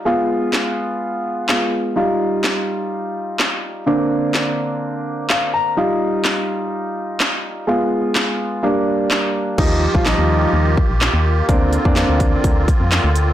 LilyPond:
<<
  \new Staff \with { instrumentName = "Accordion" } { \time 4/4 \key ees \major \tempo 4 = 126 r1 | r1 | r1 | r1 |
r1 | <ees f' g'>1 | <d c' f'>1 | }
  \new Staff \with { instrumentName = "Accordion" } { \time 4/4 \key ees \major r1 | r1 | r1 | r1 |
r1 | bes1~ | bes1 | }
  \new Staff \with { instrumentName = "Grand piano" } { \time 4/4 \key ees \major r1 | r1 | r2. f''8 bes''8 | r1 |
r1 | r1 | r1 | }
  \new Staff \with { instrumentName = "Grand piano" } { \time 4/4 \key ees \major <aes ces' f'>2. <aes ces' f'>4 | <g ees' f'>1 | <d bes c' d'>1 | <g ees' f'>1 |
<aes ces' f'>2 <g bes d'>2 | <f g ees'>8 r16 <f g f'>16 <f g ees'>4~ <f g ees'>16 r4. r16 | <bes c' d'>8 r16 <bes c' d'>16 <bes c' d'>4~ <bes c' d'>16 r4. r16 | }
  \new Staff \with { instrumentName = "FM bass" } { \clef bass \time 4/4 \key ees \major r1 | r1 | r1 | r1 |
r1 | ees,8. bes,,8 ees,8. ees,8. bes,,8 ees,8. | d,8. f,8 d,8. d,8. f,8 d,8. | }
  \new DrumStaff \with { instrumentName = "Drums" } \drummode { \time 4/4 r4 <hc sn>4 r4 <hc sn>4 | r4 <hc sn>4 r4 <hc sn>4 | r4 <hc sn>4 r4 <hc sn>4 | r4 <hc sn>4 r4 <hc sn>4 |
r4 <hc sn>4 r4 <hc sn>4 | <cymc bd>8. bd16 <hc sn>4 r8 bd8 <hc sn>4 | <hh bd>8 hh16 bd16 <hc hh sn>8 <hh bd>8 <hh bd>8 <hh bd>8 <hc hh sn>8 hh8 | }
>>